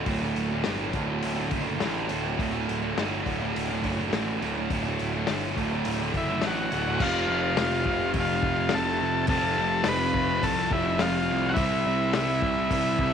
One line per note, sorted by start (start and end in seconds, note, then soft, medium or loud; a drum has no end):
0.06 0.32 D1 medium
0.06 0.64 D2 medium
0.06 0.23 A2 medium
0.06 0.21 D3 medium
0.06 kick loud
0.06 open hi-hat medium
0.22 0.53 A2 medium
0.22 0.51 D3 medium
0.36 0.61 D1 loud
0.36 open hi-hat soft
0.51 0.65 A2 medium
0.51 0.67 D3 medium
0.64 0.91 G1 medium
0.64 0.93 D2 loud
0.64 0.94 A2 loud
0.64 0.96 D3 loud
0.64 snare loud
0.64 open hi-hat medium
0.93 1.19 D1 medium
0.93 1.47 D2 medium
0.93 1.09 A2 medium
0.93 1.06 D3 medium
0.93 kick medium
0.93 open hi-hat medium
1.06 1.38 A2 medium
1.06 1.34 D3 medium
1.23 1.49 D1 medium
1.23 open hi-hat medium
1.35 1.51 D3 medium
1.39 1.49 A2 medium
1.48 1.75 D2 medium
1.48 1.65 A2 medium
1.48 open hi-hat medium
1.52 1.78 F#1 medium
1.52 1.62 D3 medium
1.52 kick medium
1.62 1.76 A2 medium
1.62 1.78 D3 medium
1.75 2.05 D2 medium
1.75 2.06 A2 loud
1.75 2.09 D3 loud
1.80 2.07 A1 medium
1.80 snare loud
1.80 open hi-hat medium
2.06 2.36 D2 medium
2.06 2.24 A2 medium
2.06 2.22 D3 medium
2.06 open hi-hat medium
2.11 2.36 D1 medium
2.22 2.37 A2 medium
2.22 2.39 D3 medium
2.36 2.65 D1 loud
2.36 2.94 D2 medium
2.36 2.52 A2 medium
2.36 2.50 D3 loud
2.36 kick loud
2.36 open hi-hat medium
2.50 2.84 A2 medium
2.50 2.81 D3 medium
2.69 2.94 D1 medium
2.69 open hi-hat medium
2.82 2.96 A2 medium
2.82 2.98 D3 medium
2.94 3.22 G1 loud
2.94 3.24 D2 loud
2.94 3.25 A2 loud
2.94 3.27 D3 loud
2.94 snare loud
2.94 open hi-hat medium
3.24 3.52 D1 medium
3.24 3.69 D2 medium
3.24 3.42 A2 medium
3.24 3.39 D3 medium
3.24 kick medium
3.24 open hi-hat medium
3.40 3.70 A2 medium
3.40 3.67 D3 medium
3.56 3.81 D1 medium
3.56 open hi-hat medium
3.68 3.81 A2 medium
3.68 3.84 D3 medium
3.82 4.09 F#1 medium
3.82 4.08 D2 medium
3.82 4.00 A2 medium
3.82 3.96 D3 medium
3.82 kick medium
3.82 open hi-hat medium
3.97 4.10 A2 medium
3.97 4.12 D3 medium
4.10 4.38 A1 medium
4.10 4.38 D2 medium
4.10 4.40 A2 loud
4.10 4.41 D3 loud
4.10 snare loud
4.10 open hi-hat medium
4.40 4.66 D1 medium
4.40 4.69 D2 medium
4.40 4.57 A2 medium
4.40 4.53 D3 medium
4.40 open hi-hat medium
4.54 4.71 A2 medium
4.54 4.72 D3 medium
4.70 4.96 D1 medium
4.70 5.14 D2 medium
4.70 4.86 A2 medium
4.70 4.82 D3 medium
4.70 kick loud
4.70 open hi-hat medium
4.83 5.12 D3 medium
4.87 5.14 A2 medium
4.99 5.25 D1 medium
4.99 open hi-hat soft
5.13 5.28 A2 medium
5.13 5.28 D3 medium
5.27 5.53 G1 medium
5.27 5.54 D2 medium
5.27 5.56 A2 medium
5.27 5.57 D3 loud
5.27 snare loud
5.27 open hi-hat medium
5.56 5.82 D1 medium
5.56 6.00 D2 medium
5.56 5.74 A2 medium
5.56 5.70 D3 medium
5.56 kick medium
5.56 open hi-hat medium
5.71 6.01 A2 medium
5.71 5.98 D3 medium
5.85 6.11 D1 medium
5.85 open hi-hat medium
5.99 6.13 A2 medium
5.99 6.14 D3 medium
6.13 6.39 F#1 medium
6.13 6.40 D2 medium
6.13 6.30 A2 medium
6.13 6.26 D3 medium
6.13 kick medium
6.13 open hi-hat medium
6.17 6.45 E4 medium
6.28 6.41 A2 medium
6.28 6.43 D3 medium
6.41 6.68 A1 medium
6.41 6.69 D2 medium
6.41 6.71 A2 loud
6.41 6.73 D3 loud
6.41 snare loud
6.41 open hi-hat medium
6.47 7.04 F#4 medium
6.70 6.97 D1 medium
6.70 6.98 D2 medium
6.70 6.89 A2 medium
6.70 6.86 D3 medium
6.70 open hi-hat medium
6.88 7.01 A2 medium
6.88 6.99 D3 medium
7.00 7.27 F1 medium
7.00 9.27 F2 medium
7.00 9.28 C3 loud
7.00 7.60 F4 medium
7.00 kick loud
7.00 crash loud
7.04 9.29 F3 medium
7.28 7.55 F1 loud
7.57 7.84 F1 medium
7.57 snare loud
7.57 open hi-hat medium
7.61 8.12 F4 medium
7.86 8.13 F1 medium
7.86 kick medium
8.14 8.42 F1 loud
8.14 kick medium
8.14 open hi-hat medium
8.20 8.76 F4 medium
8.43 8.70 F1 medium
8.43 kick loud
8.69 8.99 F1 loud
8.69 snare loud
8.69 open hi-hat medium
8.74 9.26 A4 medium
9.01 9.27 F1 medium
9.27 9.55 F1 loud
9.27 11.54 F2 loud
9.27 11.55 C3 loud
9.27 9.88 A4 loud
9.27 kick loud
9.27 open hi-hat medium
9.32 11.56 F3 loud
9.57 9.84 F1 loud
9.84 10.38 F1 medium
9.84 snare loud
9.84 open hi-hat medium
9.88 10.45 B4 loud
10.14 kick loud
10.43 10.69 C2 loud
10.43 10.72 A4 loud
10.43 kick medium
10.43 open hi-hat medium
10.71 10.98 F1 medium
10.71 11.01 E4 medium
10.71 kick medium
10.99 11.27 F1 loud
10.99 11.52 F4 medium
10.99 snare loud
10.99 open hi-hat medium
11.30 11.56 C2 medium
11.49 11.56 F#4 medium
11.54 11.83 C2 medium
11.54 13.13 C3 loud
11.54 13.13 G3 medium
11.54 12.14 E4 loud
11.54 kick loud
11.54 open hi-hat medium
11.58 13.13 C4 loud
11.86 12.12 C2 medium
12.13 12.41 C2 medium
12.13 12.71 E4 loud
12.13 snare loud
12.13 open hi-hat medium
12.42 12.69 C2 medium
12.42 kick loud
12.71 12.97 C2 loud
12.71 13.13 E4 loud
12.71 kick medium
12.71 open hi-hat medium
12.99 13.13 C2 medium
12.99 kick medium